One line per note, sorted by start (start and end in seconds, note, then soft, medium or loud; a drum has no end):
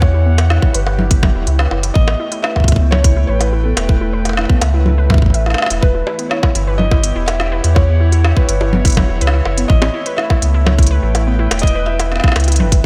0.00 0.59 E2 loud
0.00 1.96 E3 medium
0.00 5.83 E4 medium
0.00 0.09 E4 medium
0.00 3.50 G4 medium
0.00 5.83 C#5 medium
0.00 0.76 C#5 loud
0.00 1.96 F#5 medium
0.00 kick loud
0.00 high bongo medium
0.14 0.21 E4 loud
0.26 0.31 B3 medium
0.38 0.49 E5 medium
0.38 closed hi-hat medium
0.38 high bongo medium
0.50 0.58 E4 loud
0.50 snare loud
0.62 0.67 E4 loud
0.62 kick loud
0.73 1.32 G1 loud
0.73 1.42 B4 medium
0.73 0.82 B4 loud
0.73 closed hi-hat medium
0.87 0.94 E4 medium
0.87 high bongo medium
0.99 1.06 E4 loud
0.99 low conga medium
1.11 1.15 B3 medium
1.11 kick loud
1.11 closed hi-hat medium
1.23 1.34 E5 medium
1.23 kick loud
1.23 high bongo medium
1.23 low conga medium
1.35 1.47 E1 medium
1.35 1.42 E4 loud
1.47 1.67 C#2 medium
1.47 1.52 E4 loud
1.47 closed hi-hat medium
1.59 1.67 B4 loud
1.59 snare loud
1.71 1.91 F#1 medium
1.71 1.79 E4 medium
1.71 high bongo medium
1.83 1.91 E4 medium
1.83 closed hi-hat medium
1.94 2.15 A1 loud
1.94 5.83 A3 medium
1.94 2.00 B3 medium
1.94 2.45 D#5 loud
1.94 kick loud
2.08 2.19 E5 medium
2.08 high bongo medium
2.20 2.27 E4 loud
2.32 2.36 E4 loud
2.32 closed hi-hat medium
2.42 2.51 B4 medium
2.42 2.93 E5 loud
2.42 snare loud
2.55 2.63 E4 medium
2.55 5.83 G5 medium
2.55 kick medium
2.55 high bongo medium
2.60 kick medium
2.64 kick medium
2.64 closed hi-hat medium
2.68 3.25 C#2 loud
2.68 2.75 E4 loud
2.68 6.85 B4 medium
2.68 kick medium
2.72 kick medium
2.76 kick medium
2.80 2.85 B3 medium
2.91 3.25 C#5 loud
2.91 3.03 E5 medium
2.91 high bongo medium
2.91 low conga medium
3.04 3.12 E4 loud
3.04 kick loud
3.04 closed hi-hat medium
3.16 3.21 E4 loud
3.27 3.74 A1 medium
3.27 3.36 B4 loud
3.27 3.40 C#5 medium
3.39 3.48 E4 medium
3.39 3.65 B4 medium
3.39 closed hi-hat medium
3.39 high bongo medium
3.53 3.60 E4 loud
3.63 3.69 B3 medium
3.63 5.05 A4 medium
3.77 4.46 E1 medium
3.77 3.88 E5 medium
3.77 closed hi-hat medium
3.77 high bongo medium
3.89 3.96 E4 loud
3.89 kick loud
4.01 4.06 E4 loud
4.13 4.21 B4 loud
4.25 4.33 E4 medium
4.25 closed hi-hat soft
4.25 high bongo soft
4.29 high bongo soft
4.33 high bongo soft
4.37 4.45 E4 loud
4.37 snare loud
4.37 high bongo soft
4.41 high bongo soft
4.45 high bongo soft
4.50 4.54 B3 medium
4.50 kick loud
4.62 5.19 C#2 loud
4.62 4.73 E5 medium
4.62 closed hi-hat medium
4.62 high bongo medium
4.74 4.81 E4 loud
4.86 4.90 E4 loud
4.86 low conga medium
4.98 5.05 B4 loud
5.10 5.14 E5 medium
5.10 kick loud
5.10 high bongo medium
5.10 low conga medium
5.14 kick loud
5.18 kick medium
5.22 5.55 A1 medium
5.22 kick medium
5.26 kick medium
5.30 kick soft
5.30 closed hi-hat medium
5.34 5.42 E5 medium
5.46 5.57 E4 medium
5.46 snare medium
5.46 high bongo soft
5.50 snare medium
5.54 snare medium
5.54 high bongo soft
5.58 5.66 E5 medium
5.58 snare medium
5.62 snare loud
5.62 high bongo medium
5.66 snare loud
5.70 5.80 E1 loud
5.70 5.82 E4 loud
5.70 closed hi-hat medium
5.81 6.03 E1 loud
5.81 9.70 E3 medium
5.81 6.27 B4 medium
5.81 5.90 B4 loud
5.81 kick loud
5.92 12.86 E4 medium
5.92 6.02 E4 medium
6.07 6.14 E4 loud
6.07 10.37 G4 medium
6.07 high bongo medium
6.19 6.23 B3 medium
6.19 closed hi-hat soft
6.30 6.35 E4 medium
6.30 6.80 C#5 medium
6.30 snare loud
6.43 6.51 E4 loud
6.43 kick loud
6.43 high bongo medium
6.55 7.12 G1 loud
6.55 6.60 E4 loud
6.55 12.86 C#5 medium
6.55 closed hi-hat medium
6.67 6.75 B4 loud
6.78 6.87 E4 medium
6.78 7.28 D#5 loud
6.78 low conga medium
6.91 6.99 E4 loud
6.91 kick loud
6.91 high bongo soft
6.97 9.70 F#5 medium
7.04 7.08 B3 medium
7.04 closed hi-hat medium
7.16 7.61 E1 medium
7.16 7.20 E4 loud
7.26 7.35 E4 loud
7.26 7.77 E5 loud
7.26 closed hi-hat medium
7.26 high bongo medium
7.40 7.44 E4 loud
7.40 snare loud
7.52 7.59 B4 loud
7.64 8.33 E2 medium
7.64 7.71 E4 medium
7.64 closed hi-hat medium
7.75 7.84 E4 loud
7.75 8.50 C#5 loud
7.75 kick loud
7.75 high bongo medium
7.88 7.93 B3 medium
8.00 8.05 E4 loud
8.12 8.20 E4 loud
8.12 closed hi-hat soft
8.24 8.29 E4 medium
8.24 snare loud
8.37 8.44 B4 loud
8.37 kick loud
8.47 9.06 G1 loud
8.47 8.56 E4 medium
8.47 9.17 B4 medium
8.47 closed hi-hat medium
8.61 8.68 E4 loud
8.61 high bongo medium
8.73 8.77 B3 medium
8.73 low conga medium
8.85 8.89 E4 loud
8.85 kick loud
8.85 closed hi-hat medium
8.87 closed hi-hat medium
8.90 closed hi-hat medium
8.92 closed hi-hat soft
8.95 9.04 E4 loud
8.95 kick loud
8.95 closed hi-hat soft
8.95 high bongo medium
8.95 low conga medium
9.09 9.21 E1 medium
9.09 9.14 E4 loud
9.21 9.41 C#2 medium
9.21 9.29 B4 loud
9.21 closed hi-hat medium
9.27 snare loud
9.33 9.41 E4 medium
9.45 9.65 F#1 medium
9.45 9.53 E4 loud
9.45 high bongo medium
9.58 9.62 B3 medium
9.58 closed hi-hat medium
9.68 9.90 A1 loud
9.68 12.86 A3 medium
9.68 9.74 E4 loud
9.68 10.19 D#5 loud
9.68 kick loud
9.82 9.89 E4 loud
9.82 high bongo medium
9.94 9.98 E4 loud
10.06 10.13 B4 loud
10.06 closed hi-hat medium
10.17 10.25 E4 medium
10.17 10.67 E5 loud
10.17 snare loud
10.30 10.38 E4 loud
10.30 kick loud
10.30 high bongo medium
10.42 10.99 C#2 loud
10.42 10.47 B3 medium
10.42 closed hi-hat medium
10.51 10.59 E4 loud
10.51 12.86 B4 medium
10.64 10.74 E4 loud
10.64 11.34 C#5 medium
10.64 12.86 G5 medium
10.64 high bongo medium
10.64 low conga medium
10.79 10.83 E4 loud
10.79 kick loud
10.79 closed hi-hat soft
10.83 closed hi-hat medium
10.87 closed hi-hat medium
10.91 10.98 B4 loud
11.03 11.48 A1 medium
11.03 11.10 E4 medium
11.15 11.22 E4 loud
11.15 closed hi-hat medium
11.15 high bongo medium
11.27 11.31 B3 medium
11.39 11.43 E4 loud
11.51 12.20 E1 loud
11.51 11.59 E4 medium
11.51 closed hi-hat medium
11.51 high bongo medium
11.59 11.87 D#5 loud
11.59 closed hi-hat medium
11.63 11.68 E4 loud
11.63 kick loud
11.67 closed hi-hat medium
11.75 11.83 B4 loud
11.86 11.95 E4 medium
11.86 12.86 E5 loud
12.00 12.07 E4 loud
12.00 closed hi-hat medium
12.00 high bongo medium
12.12 12.16 B3 medium
12.12 snare medium
12.16 snare medium
12.20 snare medium
12.24 12.28 E4 loud
12.24 kick loud
12.24 snare medium
12.28 snare medium
12.32 snare loud
12.36 12.62 C#2 loud
12.36 12.43 E4 loud
12.36 closed hi-hat soft
12.36 high bongo medium
12.40 closed hi-hat soft
12.44 closed hi-hat soft
12.48 12.52 E4 loud
12.48 closed hi-hat medium
12.52 closed hi-hat medium
12.56 closed hi-hat medium
12.60 12.86 G1 medium
12.60 12.67 B4 loud
12.60 low conga medium
12.72 12.79 E4 medium
12.72 kick loud
12.72 closed hi-hat medium